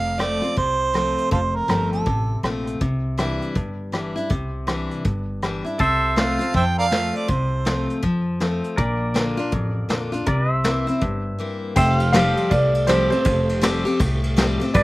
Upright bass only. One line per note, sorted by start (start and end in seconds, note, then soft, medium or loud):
0.00 0.39 F1 medium
0.57 1.13 C2 medium
1.32 1.60 F1 medium
1.69 2.01 G1 medium
2.06 2.38 A1 medium
2.43 2.75 A#1 medium
2.81 3.37 C2 medium
3.56 4.12 G1 medium
4.31 4.87 C2 medium
5.05 5.61 G1 medium
5.80 6.36 C2 medium
6.54 7.10 F2 medium
7.29 7.85 C2 medium
8.04 8.60 F2 medium
8.78 9.34 A#1 medium
9.53 9.84 A1 medium
9.90 10.22 A#1 medium
10.27 10.83 C2 medium
11.02 11.30 G1 medium
11.76 12.32 F1 medium
12.51 13.07 C2 medium
13.26 13.82 F1 medium
14.00 14.56 C2 medium
14.75 14.83 G1 loud